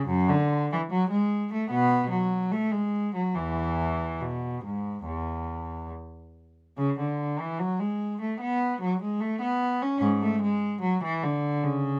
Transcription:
0, 0, Header, 1, 2, 480
1, 0, Start_track
1, 0, Tempo, 811908
1, 47, Time_signature, 4, 2, 24, 8
1, 1485, Tempo, 851064
1, 3885, Tempo, 809717
1, 6985, End_track
2, 0, Start_track
2, 0, Title_t, "Cello"
2, 0, Program_c, 0, 42
2, 45, Note_on_c, 0, 42, 78
2, 169, Note_off_c, 0, 42, 0
2, 171, Note_on_c, 0, 50, 66
2, 413, Note_off_c, 0, 50, 0
2, 429, Note_on_c, 0, 52, 54
2, 473, Note_off_c, 0, 52, 0
2, 537, Note_on_c, 0, 54, 72
2, 650, Note_off_c, 0, 54, 0
2, 653, Note_on_c, 0, 56, 59
2, 881, Note_off_c, 0, 56, 0
2, 907, Note_on_c, 0, 57, 53
2, 1005, Note_on_c, 0, 47, 55
2, 1006, Note_on_c, 0, 59, 67
2, 1013, Note_off_c, 0, 57, 0
2, 1226, Note_off_c, 0, 47, 0
2, 1238, Note_off_c, 0, 59, 0
2, 1243, Note_on_c, 0, 54, 58
2, 1480, Note_off_c, 0, 54, 0
2, 1488, Note_on_c, 0, 57, 62
2, 1601, Note_on_c, 0, 56, 56
2, 1604, Note_off_c, 0, 57, 0
2, 1842, Note_off_c, 0, 56, 0
2, 1846, Note_on_c, 0, 54, 48
2, 1960, Note_on_c, 0, 52, 52
2, 1963, Note_on_c, 0, 40, 46
2, 1964, Note_off_c, 0, 54, 0
2, 2425, Note_off_c, 0, 40, 0
2, 2444, Note_on_c, 0, 47, 50
2, 2446, Note_off_c, 0, 52, 0
2, 2685, Note_off_c, 0, 47, 0
2, 2685, Note_on_c, 0, 44, 45
2, 2919, Note_off_c, 0, 44, 0
2, 2920, Note_on_c, 0, 40, 41
2, 3390, Note_off_c, 0, 40, 0
2, 3889, Note_on_c, 0, 49, 61
2, 4001, Note_off_c, 0, 49, 0
2, 4017, Note_on_c, 0, 50, 47
2, 4250, Note_off_c, 0, 50, 0
2, 4257, Note_on_c, 0, 52, 48
2, 4372, Note_on_c, 0, 54, 54
2, 4374, Note_off_c, 0, 52, 0
2, 4492, Note_off_c, 0, 54, 0
2, 4494, Note_on_c, 0, 56, 53
2, 4732, Note_off_c, 0, 56, 0
2, 4744, Note_on_c, 0, 57, 45
2, 4855, Note_off_c, 0, 57, 0
2, 4856, Note_on_c, 0, 59, 58
2, 5089, Note_off_c, 0, 59, 0
2, 5098, Note_on_c, 0, 54, 53
2, 5213, Note_off_c, 0, 54, 0
2, 5222, Note_on_c, 0, 56, 49
2, 5331, Note_on_c, 0, 57, 55
2, 5335, Note_off_c, 0, 56, 0
2, 5452, Note_off_c, 0, 57, 0
2, 5453, Note_on_c, 0, 59, 57
2, 5686, Note_off_c, 0, 59, 0
2, 5696, Note_on_c, 0, 61, 55
2, 5806, Note_on_c, 0, 44, 69
2, 5812, Note_off_c, 0, 61, 0
2, 5925, Note_off_c, 0, 44, 0
2, 5934, Note_on_c, 0, 57, 52
2, 6048, Note_off_c, 0, 57, 0
2, 6049, Note_on_c, 0, 56, 57
2, 6283, Note_off_c, 0, 56, 0
2, 6284, Note_on_c, 0, 54, 59
2, 6403, Note_off_c, 0, 54, 0
2, 6416, Note_on_c, 0, 52, 54
2, 6529, Note_off_c, 0, 52, 0
2, 6532, Note_on_c, 0, 50, 53
2, 6768, Note_on_c, 0, 49, 61
2, 6769, Note_off_c, 0, 50, 0
2, 6985, Note_off_c, 0, 49, 0
2, 6985, End_track
0, 0, End_of_file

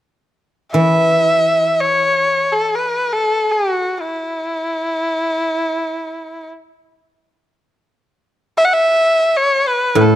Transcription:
0, 0, Header, 1, 3, 480
1, 0, Start_track
1, 0, Tempo, 500000
1, 9749, End_track
2, 0, Start_track
2, 0, Title_t, "Erhu"
2, 0, Program_c, 0, 110
2, 692, Note_on_c, 0, 76, 76
2, 1733, Note_on_c, 0, 73, 75
2, 1747, Note_off_c, 0, 76, 0
2, 2422, Note_on_c, 0, 69, 66
2, 2436, Note_off_c, 0, 73, 0
2, 2640, Note_on_c, 0, 71, 61
2, 2655, Note_off_c, 0, 69, 0
2, 3003, Note_on_c, 0, 69, 71
2, 3017, Note_off_c, 0, 71, 0
2, 3370, Note_on_c, 0, 66, 62
2, 3384, Note_off_c, 0, 69, 0
2, 3845, Note_on_c, 0, 64, 60
2, 3859, Note_off_c, 0, 66, 0
2, 6216, Note_off_c, 0, 64, 0
2, 8230, Note_on_c, 0, 76, 76
2, 8302, Note_on_c, 0, 78, 70
2, 8316, Note_off_c, 0, 76, 0
2, 8379, Note_on_c, 0, 76, 84
2, 8393, Note_off_c, 0, 78, 0
2, 8989, Note_on_c, 0, 73, 82
2, 9003, Note_off_c, 0, 76, 0
2, 9287, Note_on_c, 0, 71, 73
2, 9301, Note_off_c, 0, 73, 0
2, 9609, Note_on_c, 0, 69, 74
2, 9623, Note_off_c, 0, 71, 0
2, 9749, Note_off_c, 0, 69, 0
2, 9749, End_track
3, 0, Start_track
3, 0, Title_t, "Guzheng"
3, 0, Program_c, 1, 107
3, 711, Note_on_c, 1, 52, 39
3, 3711, Note_off_c, 1, 52, 0
3, 9556, Note_on_c, 1, 45, 55
3, 9749, Note_off_c, 1, 45, 0
3, 9749, End_track
0, 0, End_of_file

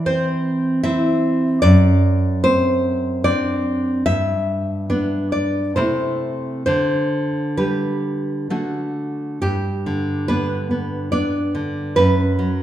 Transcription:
0, 0, Header, 1, 2, 480
1, 0, Start_track
1, 0, Key_signature, 1, "major"
1, 0, Tempo, 789474
1, 995, Time_signature, 3, 2, 24, 8
1, 1480, Tempo, 824176
1, 2920, Tempo, 875912
1, 3880, Tempo, 920245
1, 5320, Tempo, 849858
1, 7133, End_track
2, 0, Start_track
2, 0, Title_t, "Nylon-string guitar"
2, 0, Program_c, 0, 24
2, 0, Note_on_c, 0, 52, 67
2, 37, Note_on_c, 0, 60, 57
2, 38, Note_on_c, 0, 72, 76
2, 498, Note_off_c, 0, 72, 0
2, 504, Note_off_c, 0, 60, 0
2, 507, Note_on_c, 0, 76, 86
2, 512, Note_on_c, 0, 60, 53
2, 515, Note_on_c, 0, 64, 50
2, 967, Note_off_c, 0, 60, 0
2, 969, Note_off_c, 0, 64, 0
2, 970, Note_off_c, 0, 76, 0
2, 973, Note_off_c, 0, 52, 0
2, 984, Note_on_c, 0, 74, 93
2, 991, Note_on_c, 0, 42, 75
2, 1454, Note_off_c, 0, 74, 0
2, 1482, Note_on_c, 0, 60, 50
2, 1482, Note_on_c, 0, 72, 86
2, 1935, Note_off_c, 0, 72, 0
2, 1944, Note_off_c, 0, 60, 0
2, 1950, Note_on_c, 0, 60, 44
2, 1951, Note_on_c, 0, 74, 80
2, 1958, Note_on_c, 0, 62, 48
2, 2405, Note_off_c, 0, 42, 0
2, 2405, Note_off_c, 0, 60, 0
2, 2409, Note_off_c, 0, 62, 0
2, 2409, Note_off_c, 0, 74, 0
2, 2425, Note_on_c, 0, 76, 98
2, 2426, Note_on_c, 0, 43, 63
2, 2914, Note_on_c, 0, 62, 56
2, 2915, Note_on_c, 0, 59, 46
2, 3130, Note_off_c, 0, 76, 0
2, 3147, Note_on_c, 0, 74, 59
2, 3366, Note_off_c, 0, 59, 0
2, 3367, Note_off_c, 0, 43, 0
2, 3367, Note_off_c, 0, 62, 0
2, 3377, Note_off_c, 0, 74, 0
2, 3387, Note_on_c, 0, 72, 65
2, 3391, Note_on_c, 0, 48, 52
2, 3391, Note_on_c, 0, 57, 36
2, 3393, Note_on_c, 0, 64, 38
2, 3394, Note_off_c, 0, 57, 0
2, 3394, Note_on_c, 0, 57, 37
2, 3396, Note_off_c, 0, 64, 0
2, 3396, Note_on_c, 0, 64, 42
2, 3858, Note_off_c, 0, 72, 0
2, 3859, Note_off_c, 0, 57, 0
2, 3860, Note_off_c, 0, 64, 0
2, 3866, Note_off_c, 0, 48, 0
2, 3880, Note_on_c, 0, 72, 73
2, 3886, Note_on_c, 0, 50, 57
2, 4345, Note_off_c, 0, 72, 0
2, 4358, Note_on_c, 0, 55, 38
2, 4358, Note_on_c, 0, 71, 58
2, 4361, Note_on_c, 0, 67, 45
2, 4822, Note_off_c, 0, 55, 0
2, 4823, Note_off_c, 0, 67, 0
2, 4828, Note_off_c, 0, 50, 0
2, 4842, Note_on_c, 0, 57, 36
2, 4843, Note_on_c, 0, 50, 49
2, 4845, Note_off_c, 0, 57, 0
2, 4845, Note_on_c, 0, 57, 32
2, 4846, Note_on_c, 0, 66, 35
2, 4847, Note_off_c, 0, 66, 0
2, 4847, Note_on_c, 0, 66, 34
2, 5060, Note_off_c, 0, 71, 0
2, 5300, Note_off_c, 0, 57, 0
2, 5300, Note_off_c, 0, 66, 0
2, 5305, Note_off_c, 0, 50, 0
2, 5318, Note_on_c, 0, 67, 74
2, 5323, Note_on_c, 0, 43, 58
2, 5571, Note_on_c, 0, 50, 47
2, 5786, Note_off_c, 0, 67, 0
2, 5808, Note_on_c, 0, 71, 75
2, 5813, Note_on_c, 0, 59, 51
2, 5813, Note_on_c, 0, 62, 51
2, 6041, Note_off_c, 0, 59, 0
2, 6048, Note_on_c, 0, 59, 38
2, 6269, Note_off_c, 0, 71, 0
2, 6277, Note_off_c, 0, 59, 0
2, 6279, Note_off_c, 0, 62, 0
2, 6279, Note_on_c, 0, 74, 75
2, 6285, Note_on_c, 0, 59, 43
2, 6285, Note_on_c, 0, 62, 51
2, 6290, Note_off_c, 0, 50, 0
2, 6522, Note_on_c, 0, 50, 42
2, 6742, Note_off_c, 0, 59, 0
2, 6743, Note_off_c, 0, 62, 0
2, 6743, Note_off_c, 0, 74, 0
2, 6745, Note_off_c, 0, 43, 0
2, 6755, Note_on_c, 0, 71, 88
2, 6758, Note_on_c, 0, 42, 65
2, 6764, Note_off_c, 0, 50, 0
2, 6996, Note_on_c, 0, 54, 47
2, 7133, Note_off_c, 0, 42, 0
2, 7133, Note_off_c, 0, 54, 0
2, 7133, Note_off_c, 0, 71, 0
2, 7133, End_track
0, 0, End_of_file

